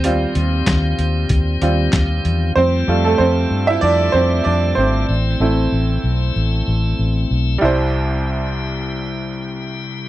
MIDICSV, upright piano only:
0, 0, Header, 1, 2, 480
1, 0, Start_track
1, 0, Key_signature, 0, "major"
1, 0, Tempo, 631579
1, 27, Time_signature, 4, 2, 24, 8
1, 7666, End_track
2, 0, Start_track
2, 0, Title_t, "Upright piano"
2, 0, Program_c, 0, 0
2, 0, Control_c, 0, 64, 127
2, 0, Note_on_c, 0, 60, 63
2, 0, Note_on_c, 0, 72, 83
2, 31, Note_on_c, 0, 55, 50
2, 35, Note_off_c, 0, 60, 0
2, 35, Note_on_c, 0, 60, 47
2, 41, Note_on_c, 0, 65, 57
2, 716, Note_off_c, 0, 72, 0
2, 719, Note_off_c, 0, 55, 0
2, 721, Note_off_c, 0, 60, 0
2, 724, Note_off_c, 0, 65, 0
2, 1228, Note_on_c, 0, 55, 41
2, 1231, Note_on_c, 0, 60, 37
2, 1236, Note_on_c, 0, 65, 44
2, 1444, Note_off_c, 0, 55, 0
2, 1445, Note_off_c, 0, 60, 0
2, 1448, Note_off_c, 0, 65, 0
2, 1942, Note_on_c, 0, 72, 82
2, 1956, Control_c, 0, 64, 0
2, 1958, Note_on_c, 0, 60, 62
2, 2074, Control_c, 0, 64, 127
2, 2187, Note_on_c, 0, 55, 47
2, 2193, Note_on_c, 0, 57, 45
2, 2195, Note_on_c, 0, 65, 54
2, 2301, Note_off_c, 0, 60, 0
2, 2315, Note_on_c, 0, 69, 67
2, 2323, Note_off_c, 0, 57, 0
2, 2330, Note_off_c, 0, 72, 0
2, 2335, Note_on_c, 0, 57, 54
2, 2418, Note_on_c, 0, 72, 73
2, 2427, Note_off_c, 0, 57, 0
2, 2427, Note_off_c, 0, 69, 0
2, 2436, Note_on_c, 0, 60, 54
2, 2780, Note_off_c, 0, 60, 0
2, 2791, Note_on_c, 0, 76, 78
2, 2809, Note_off_c, 0, 72, 0
2, 2814, Note_on_c, 0, 64, 62
2, 2877, Note_off_c, 0, 55, 0
2, 2881, Note_off_c, 0, 65, 0
2, 2897, Note_on_c, 0, 74, 87
2, 2905, Note_off_c, 0, 76, 0
2, 2906, Note_off_c, 0, 64, 0
2, 2919, Note_on_c, 0, 62, 66
2, 3133, Note_on_c, 0, 72, 76
2, 3137, Note_off_c, 0, 62, 0
2, 3150, Note_off_c, 0, 74, 0
2, 3155, Note_on_c, 0, 60, 59
2, 3374, Note_on_c, 0, 74, 71
2, 3375, Note_off_c, 0, 60, 0
2, 3388, Note_off_c, 0, 72, 0
2, 3397, Note_on_c, 0, 62, 58
2, 3612, Note_on_c, 0, 72, 66
2, 3616, Note_off_c, 0, 62, 0
2, 3628, Note_off_c, 0, 74, 0
2, 3635, Note_on_c, 0, 60, 51
2, 3877, Control_c, 0, 64, 0
2, 3999, Control_c, 0, 64, 127
2, 4102, Note_off_c, 0, 60, 0
2, 4107, Note_on_c, 0, 57, 42
2, 4113, Note_on_c, 0, 60, 41
2, 4117, Note_on_c, 0, 64, 46
2, 4797, Note_off_c, 0, 57, 0
2, 4800, Note_off_c, 0, 60, 0
2, 4802, Note_off_c, 0, 64, 0
2, 5270, Note_off_c, 0, 72, 0
2, 5764, Note_on_c, 0, 55, 65
2, 5787, Note_on_c, 0, 64, 55
2, 5789, Note_on_c, 0, 36, 59
2, 5798, Control_c, 0, 64, 0
2, 5814, Note_on_c, 0, 72, 67
2, 5948, Control_c, 0, 64, 127
2, 7666, Note_off_c, 0, 36, 0
2, 7666, Note_off_c, 0, 55, 0
2, 7666, Note_off_c, 0, 64, 0
2, 7666, Note_off_c, 0, 72, 0
2, 7666, End_track
0, 0, End_of_file